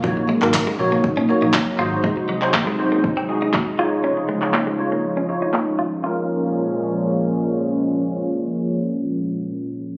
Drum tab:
CP |---xx-------x---|---xx-------x---|---xx-------x---|----------------|
SD |----o-------o---|----o-------o---|----o-------o---|----------------|
BD |o---o---o---o---|o---o---o---o---|----------------|----------------|

CP |----------------|
SD |----------------|
BD |----------------|